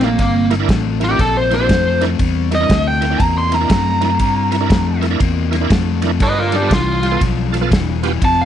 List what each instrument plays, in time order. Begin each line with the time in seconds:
Already playing: fingered electric bass A#1
0.01 overdriven electric guitar C3 A3, lead electric guitar A#3, tonewheel organ D4 E4 A#4, snare, ride
0.19 fingered electric bass G1, overdriven electric guitar C3 G3, lead electric guitar A#3, kick, snare, ride
0.50 overdriven electric guitar C3 G3, tonewheel organ E4 A#4, snare, ride
0.59 tonewheel organ D4 E4 A#4
0.69 fingered electric bass A1, overdriven electric guitar C3 A3, kick, snare, ride
1.00 overdriven electric guitar C3 A3, tonewheel organ E4 A#4, snare, ride
1.04 lead electric guitar G4
1.09 tonewheel organ D4 E4 A#4
1.19 fingered electric bass A#1, overdriven electric guitar C3 A#3, lead electric guitar A4, kick, snare, ride
1.37 lead electric guitar C5
1.50 overdriven electric guitar C3 A#3, tonewheel organ E4 C5, snare, ride
1.55 lead electric guitar C5
1.60 tonewheel organ D4 E4 G4
1.69 fingered electric bass F2, overdriven electric guitar C3 A3, kick, snare, ride
2.01 overdriven electric guitar C3 A3, tonewheel organ D4 E4 A#4, snare, ride
2.19 fingered electric bass E2, overdriven electric guitar C3 G3, kick, ride
2.51 overdriven electric guitar C3 G3, tonewheel organ E4 A#4, lead electric guitar D#5, snare, ride
2.60 tonewheel organ D4 E4 A#4
2.69 fingered electric bass D2, overdriven electric guitar C3 A3, kick, snare, ride
2.88 lead electric guitar G5
3.01 overdriven electric guitar C3 A3, tonewheel organ E4 A#4, snare, ride
3.10 tonewheel organ D4 E4 A#4
3.20 fingered electric bass E2, overdriven electric guitar C3 A#3, lead electric guitar A#5, kick, ride
3.38 lead electric guitar C6
3.51 overdriven electric guitar C3 A#3, tonewheel organ E4 A#4, lead electric guitar A#5, snare, ride
3.61 tonewheel organ D4 E4 A#4
3.69 fingered electric bass F#2, overdriven electric guitar C3 A3, kick, snare, ride
4.01 overdriven electric guitar C3 A3, tonewheel organ D4 E4 A#4, snare, ride
4.19 fingered electric bass G2, overdriven electric guitar C3 G3, kick, ride
4.51 overdriven electric guitar C3 G3, tonewheel organ E4 A#4, snare, ride
4.61 tonewheel organ D4 E4 A#4
4.69 fingered electric bass F2, overdriven electric guitar C3 A3, kick, snare, ride
5.01 overdriven electric guitar C3 A3, tonewheel organ E4 A#4, snare, ride
5.11 tonewheel organ D4 E4 A#4
5.19 fingered electric bass E2, overdriven electric guitar C3 A#3, kick, ride
5.51 overdriven electric guitar C3 A#3, tonewheel organ E4 A#4, snare, ride
5.61 tonewheel organ D4 E4 A#4
5.70 fingered electric bass F2, overdriven electric guitar C3 A3, kick, snare, ride
6.02 overdriven electric guitar C3 A3, tonewheel organ D4 E4 A#4, snare, ride
6.20 fingered electric bass G2, overdriven electric guitar G2 D3, lead electric guitar B4 D#5, kick, snare, ride
6.38 lead electric guitar F4 A#4
6.51 overdriven electric guitar G2 D3, lead electric guitar D4, tonewheel organ F4 A4, snare, ride
6.56 lead electric guitar G4
6.62 tonewheel organ B3 F4 A4
6.70 fingered electric bass C2, overdriven electric guitar G2 E3, lead electric guitar F4, kick, snare, ride
7.03 overdriven electric guitar G2 E3, tonewheel organ F4 G4, snare, ride
7.11 tonewheel organ B3 F4 A4
7.21 fingered electric bass B1, overdriven electric guitar G2 F3, kick, snare, ride
7.52 overdriven electric guitar G2 F3, tonewheel organ F4 A4, snare, ride
7.61 tonewheel organ B3 F4 A4
7.71 fingered electric bass E1, overdriven electric guitar G2 E3, kick, snare, ride
8.03 overdriven electric guitar G2 E3, tonewheel organ B3 F4 G4, snare, ride
8.21 fingered electric bass F1, overdriven electric guitar F2 C3, lead electric guitar A5, kick, ride
8.42 lead electric guitar F5